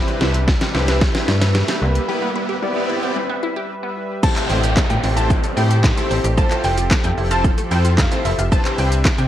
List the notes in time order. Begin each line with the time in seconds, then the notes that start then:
Already playing: C3 G3 C4 D4 E4 G4 B4 E5, riser
0.08 C4, closed hi-hat
0.21 C2 E4, snare
0.34 B4, closed hi-hat
0.48 B3, kick, snare
0.61 C4, snare, closed hi-hat
0.74 C2 C4 E4 G4 B4, snare
0.88 B4, snare, closed hi-hat
1.01 B3, kick, snare
1.15 C4, snare, closed hi-hat
1.28 G2 E4, snare
1.42 B4, snare, closed hi-hat
1.55 snare
1.68 C4, snare, closed hi-hat
1.82 C2
1.95 G4 B4, closed hi-hat
2.08 G3 B3 E4 G4 B4
2.22 B3
2.36 E4
2.49 G4 B4
2.62 G3 B3 E4 G4 D5
2.76 B3
2.89 E4
3.03 G4
3.16 G3
3.29 B3
3.43 E4
3.56 G4
3.83 B3
4.23 G3 A3 C4 E4 G4 A4 C5 A5, kick, crash, downlifter, shaker
4.36 A3, clap, closed hi-hat, shaker
4.49 A1 G5, open hi-hat, shaker
4.63 G4, closed hi-hat, shaker
4.76 kick, snare, clap, shaker
4.90 A2 A3 G5, closed hi-hat, shaker
5.03 A1 C4 A4 C5, open hi-hat, shaker
5.16 C4 E4 G4 A4 C5 A5, closed hi-hat, shaker
5.30 G3, kick, shaker
5.44 A3, closed hi-hat, shaker
5.56 A2 C4 E4 G4 A4 C5 G5, open hi-hat, shaker
5.70 G4, closed hi-hat, shaker
5.83 G3, kick, snare, clap, shaker
5.97 A3 C4 E4 G4 A4 C5, closed hi-hat, shaker
6.10 A1 C4, open hi-hat, shaker
6.24 A1 G4, closed hi-hat, shaker
6.37 F3 C4 E4 F4 A4 C5 A5, kick, shaker
6.50 A3, clap, closed hi-hat, shaker
6.64 F1 G5, open hi-hat, shaker
6.78 F4, closed hi-hat, shaker
6.91 kick, snare, clap, shaker
7.04 F2 A3 G5, closed hi-hat, shaker
7.17 F1 E4 A4 C5, open hi-hat, shaker
7.31 C4 E4 F4 A4 C5 A5, closed hi-hat, shaker
7.44 F3, kick, shaker
7.58 A3, closed hi-hat, shaker
7.71 F2 C4 E4 F4 A4 C5 G5, open hi-hat, shaker
7.85 F4, closed hi-hat, shaker
7.98 F3 F5, kick, snare, clap, shaker
8.11 A3 C4 E4 F4 A4 C5, closed hi-hat, shaker
8.25 F1 E4 E5, open hi-hat, shaker
8.38 F1 F4, closed hi-hat, shaker
8.52 G3 B3 C4 E4 G4 B4 C5 A5, kick, shaker
8.65 C4, clap, closed hi-hat, shaker
8.78 C2 G5, open hi-hat, shaker
8.92 B4, closed hi-hat, shaker
9.05 kick, snare, clap, shaker
9.19 C3 C4 G5, closed hi-hat, shaker